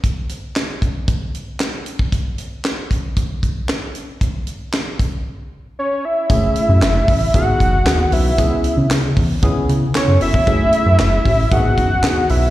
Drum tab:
HH |x-x-x-x-x-x-x-x-|x-x-x-x-x-x-x-x-|x-x-x-x---------|x-x-x-o-x-x-x-o-|
CP |----x-------x---|----x-------x---|----x-----------|----x-------x---|
SD |----o-------o---|----o-------o---|----o-----------|----o-------o---|
BD |o-----o-o------o|o-----o-o-o-----|o-----o---------|o-----o-o-o-----|

HH |x-x-x-o-x-x-x-o-|x-x-x-o-x-x-x-o-|
CP |----x-------x---|----x-------x---|
SD |----o-------o---|----o-------o---|
BD |o-----o-o------o|o-----o-o-o-----|